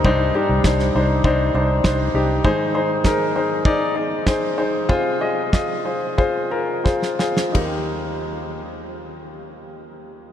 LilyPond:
<<
  \new Staff \with { instrumentName = "Grand piano" } { \time 4/4 \key ees \major \tempo 4 = 95 <d' ees' c''>8 <d' ees' g'>8 <d' ees' c''>8 <d' ees' c''>8 <d' ees' c''>8 <d' ees' c''>8 <d' ees' c''>8 <d' ees' g'>8 | <ees' aes' c''>8 <ees' aes' c''>8 <ees' aes' bes'>8 <ees' aes' c''>8 <ees' aes' d''>8 <ees' aes' d''>8 <ees' aes' c''>8 <ees' aes' c''>8 | <f' aes' c''>8 <f' aes' ees''>8 <f' aes' ees''>8 <f' aes' c''>8 <f' aes' c''>8 <f' aes' bes'>8 <f' aes' c''>8 <f' aes' c''>8 | <ees' g' bes'>1 | }
  \new Staff \with { instrumentName = "Grand piano" } { \clef bass \time 4/4 \key ees \major g,4. r2 r8 | <aes, ees>4. r2 r8 | c4. r2 r8 | ees,1 | }
  \new Staff \with { instrumentName = "Fingered electric bass" } { \clef bass \time 4/4 \key ees \major c,8 r16 c,16 c,8 c,8 c,8 c,8 c,8 c,8 | r1 | r1 | r1 | }
  \new DrumStaff \with { instrumentName = "Drums" } \drummode { \time 4/4 bd4 <bd sn>16 sn8. bd4 <bd sn>4 | bd4 <bd sn>4 bd4 <bd sn>4 | bd4 <bd sn>4 bd4 <bd sn>16 sn16 sn16 sn16 | <bd cymr>4 r4 r4 r4 | }
>>